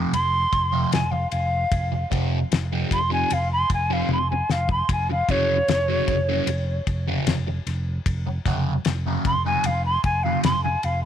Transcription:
Already playing: F2 C3 F3
0.13 F1 C6, muted distorted electric guitar stroke, ride
0.53 F1, kick, ride
0.72 F2 C3 F3
0.92 F1 G#5, snare, ride
1.11 F5, muted distorted electric guitar stroke
1.31 F1 F5, ride
1.72 F1, kick, ride
1.92 muted distorted electric guitar stroke
2.11 F1 F2 C3 F3, kick, ride
2.52 F1, muted distorted electric guitar stroke, snare, ride
2.72 F2 C3 F3
2.91 F1 C6, kick, ride
3.10 F2 C3 F3 G#5
3.30 F1 F5, muted distorted electric guitar stroke, ride
3.53 C6
3.70 F1, kick, ride
3.74 G#5
3.90 F2 C3 F3 F5
4.09 F1, high tom
4.13 C6
4.31 G#5, muted distorted electric guitar stroke
4.49 F1 F5, snare
4.69 C6, kick
4.89 F1 G#5, kick, ride
5.10 F5, muted distorted electric guitar stroke
5.29 F1 F#2 C#3 F#3 C#5, kick, ride
5.68 F1, muted distorted electric guitar stroke, snare, ride
5.88 F#2 C#3 F#3
6.08 F1, kick, ride
6.29 F#2 C#3 F#3
6.47 F1, muted distorted electric guitar stroke, ride
6.87 F1, kick, ride
7.07 F#2 C#3 F#3
7.27 F1, snare, ride
7.47 muted distorted electric guitar stroke
7.66 F1, snare, ride
8.06 F1, kick, ride
8.27 muted distorted electric guitar stroke
8.46 F1 F#2 C#3 F#3, kick, snare, ride
8.85 F1, muted distorted electric guitar stroke, snare, ride
9.06 F#2 C#3 F#3
9.25 F1 C6, kick, ride
9.46 F#2 C#3 F#3 G#5
9.64 F1 F5, muted distorted electric guitar stroke, ride
9.86 C6
10.04 F1 G#5, kick, ride
10.23 F#2 C#3 F#3 F5
10.44 F1 C6, snare, ride
10.64 G#5, muted distorted electric guitar stroke
10.83 F1 F5, ride

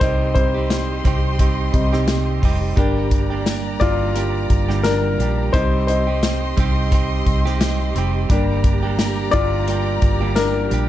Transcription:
Already playing: G4
0.00 C2 G3 C4 D#4 G4 C5 D#5 C6, kick, closed hi-hat
0.34 G3 C4 D#4 C5, kick, closed hi-hat
0.54 C4 D#4 G4
0.70 snare, closed hi-hat, tambourine
1.04 C2 G3 C4 D#4 G4, kick, closed hi-hat
1.38 G3 C4 D#4 G4, kick, closed hi-hat
1.74 C2 G3 C4 D#4, kick, closed hi-hat
1.93 C3 G3 C4 D#4 G4, snare
2.08 snare, closed hi-hat, tambourine
2.42 F1 G3 C4 D#4 G4, kick, open hi-hat
2.76 G1 G3 A#3 D4 G4 D5 A#5, kick, closed hi-hat
3.11 kick, closed hi-hat
3.30 G3 A#3 D4 G4
3.46 snare, closed hi-hat, tambourine
3.80 G1 G3 A#3 D4 F4 G4 D5, kick, closed hi-hat
4.14 G3 A#3 D4 G4, closed hi-hat
4.50 G1, kick, closed hi-hat
4.69 G2 D3 G3 A#3 D4 G4, snare
4.83 D4 A#4, snare, closed hi-hat, tambourine
5.18 A#1 G3 A#3 D4 G4, closed hi-hat
5.52 C2 G3 C4 D#4 G4 C5 D#5 C6, kick, closed hi-hat
5.87 D#4 C5, closed hi-hat
6.07 C4 D#4 G4
6.23 snare, closed hi-hat, tambourine
6.57 C2 G3 C4 D#4 G4, kick, closed hi-hat
6.91 G3 C4 D#4 G4, kick, closed hi-hat
7.26 C2, kick, closed hi-hat
7.45 C3 G3 C4 D#4 G4, snare
7.61 snare, closed hi-hat, tambourine
7.95 F1 G3 C4 D#4 G4, closed hi-hat
8.29 G1 G3 A#3 D4 G4 D5 A#5, kick, closed hi-hat
8.64 kick, closed hi-hat
8.83 G3 A#3 D4 G4
8.99 snare, closed hi-hat, tambourine
9.31 G1 G3 A#3 D4 F4 D5, kick, closed hi-hat
9.35 G4
9.67 G3 A#3 D4 G4, closed hi-hat
10.02 G1, kick, closed hi-hat
10.21 G2 D3 G3 A#3 D4 G4
10.36 D4 A#4, snare, closed hi-hat, tambourine
10.71 A#1 G3 A#3 D4 G4, closed hi-hat

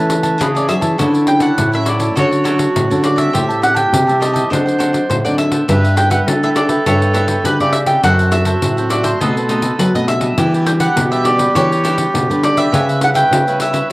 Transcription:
Already playing: E3 A3 C#4 A4 B4 E5 A5
0.00 C#5
0.10 pandeiro
0.23 C#5 E5 A5, pandeiro
0.40 C#3 E3 C#4 G#4 B4, pandeiro
0.55 C#4 G#4 B4 C#5 D5 E5 A5, pandeiro
0.68 F#3 G#4 C#5 E5 A5, pandeiro
0.81 E3 C#5 E5 A5, pandeiro
0.98 D3 F#3 C#4 E4 F#4 A4 C#5 D5, pandeiro
1.14 A4 C#5 D5, pandeiro
1.27 F#3 C#4 E4 G5, muted cavaquinho stroke, pandeiro
1.40 A4 C#5 D5 F#5, pandeiro
1.58 A2, pandeiro
1.72 F#3 C#4 E4 A4 C#5 D5 E5, pandeiro
1.85 F#4 A4 C#5 D5, pandeiro
1.99 A4 C#5 D5, pandeiro
2.16 D3 F#3 C#4 E4 F#4 A4 C#5 D5, pandeiro
2.31 A4 C#5 D5, pandeiro
2.44 F#3 C#4 E4 F#4 A4 C#5 D5, pandeiro
2.58 A4 C#5 D5, pandeiro
2.76 A2, pandeiro
2.90 D3 F#3 C#4 E4 A4 C#5 D5, pandeiro
3.03 D5, muted cavaquinho stroke, pandeiro
3.16 G3 C4 E4 A4 C#5 D5 E5, pandeiro
3.33 A2 G4 C5 E5 A5, pandeiro
3.49 C5 E5 A5, pandeiro
3.62 G3 C4 E4 F#5, muted cavaquinho stroke, pandeiro
3.75 C5 E5 G5 A5, pandeiro
3.93 C3 E3, pandeiro
4.07 G3 C4 E4 C5 E5 A5, pandeiro
4.20 G4 C5 D#5 E5 A5, pandeiro
4.34 C5 E5 A5, pandeiro
4.50 D3 F#3 C4 D4 D#4 C5 D5 F#5, pandeiro
4.66 C5 D5 F#5, pandeiro
4.78 F#3 C4 D4 D#4 C5 D5 F#5, pandeiro
4.93 C5 D5 F#5, pandeiro
5.09 A2 C5, pandeiro
5.25 D3 F#3 C4 D#4 C5 D5 F#5, pandeiro
5.38 E5, muted cavaquinho stroke, pandeiro
5.52 B3 E4 A4 C5 D5 F#5, pandeiro
5.68 G2 G3 D4 G4 B4 E5, pandeiro
5.84 G4 B4 E5, pandeiro
5.96 B3 E4 A4 G5, muted cavaquinho stroke, pandeiro
6.10 G4 B4 E5 F#5, pandeiro
6.27 D3 A4, pandeiro
6.43 B3 E4 G4 A4 B4 E5, pandeiro
6.55 D4 G4 B4 D5 E5, pandeiro
6.69 G4 B4 E5, pandeiro
6.86 G2 G3 B3 D4 E4 G4 A4 B4 C#5 E5, pandeiro
7.01 G4 B4 E5, pandeiro
7.13 B3 D4 E4 G4 A4 B4 E5, pandeiro
7.28 G4 B4 E5, pandeiro
7.44 D3 G4 B4, pandeiro
7.60 C#3 B3 E4 G4 A4 B4 D5 E5, pandeiro
7.73 E5, muted cavaquinho stroke, pandeiro
7.86 C4 E4 G4 A4 B4 E5 G5, pandeiro
8.03 F#2 F#3 F#4 A4 C5 E5 F#5, pandeiro
8.19 A4 C5 E5, pandeiro
8.31 C4 E4 A4 E5, muted cavaquinho stroke, pandeiro
8.45 A4 C5 E5, pandeiro
8.62 A2 F#3, pandeiro
8.77 C4 E4 A4 C5 E5, pandeiro
8.89 F#4 A4 C5 D5 E5, pandeiro
9.03 A4 C5 E5, pandeiro
9.20 B2 A3 C4 D#4 A4 B4 D#5, pandeiro
9.36 A4 B4 D#5, pandeiro
9.49 A3 C4 D#4 A4 B4 D#5, pandeiro
9.62 A4 B4 D#5, pandeiro
9.79 F#3 B4, pandeiro
9.94 B2 A3 C4 D#4 A4 B4 D#5, pandeiro
10.07 E5, muted cavaquinho stroke, pandeiro
10.21 G3 D4 F#4 A4 B4 D#5, pandeiro
10.38 E3 E4 G4 B4 D5, pandeiro
10.54 G4 B4 D5, pandeiro
10.66 G3 D4 F#4 G5, muted cavaquinho stroke, pandeiro
10.80 G4 B4 D5 F#5, pandeiro
10.96 B2, pandeiro
11.11 G3 D4 G4 B4 D5 E5, pandeiro
11.24 E4 G4 B4 D5, pandeiro
11.38 G4 B4 D5, pandeiro
11.55 E3 G3 D4 E4 F#4 G4 B4 C#5 D5, pandeiro
11.71 G4 B4 D5, pandeiro
11.84 G3 D4 E4 G4 B4 D5, pandeiro
11.97 G4 B4 D5, pandeiro
12.14 B2, pandeiro
12.30 D3 G3 D4 G4 B4 D5, pandeiro
12.43 D5, muted cavaquinho stroke, pandeiro
12.56 G4 B4 D5 E5, pandeiro
12.72 C#3 G3 B3 E4 G4 B4 C#5 E5, pandeiro
12.89 B4 C#5 E5, pandeiro
13.01 G3 B3 E4 F#5, muted cavaquinho stroke, pandeiro
13.14 B4 C#5 E5 G5, pandeiro
13.31 C#3, pandeiro
13.47 G3 B3 E4 B4 C#5 E5, pandeiro
13.60 G4 B4 C#5 E5, pandeiro
13.73 B4 C#5 E5, pandeiro

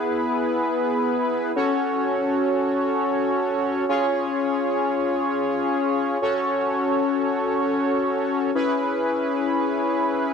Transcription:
Already playing: B3 E4 G#4 B4
1.56 C#4 F#4 A4 C#5
3.89 C#4 F4 G#4 C#5
6.22 C#4 F#4 A4 C#5
8.55 C#4 E4 G#4 B4

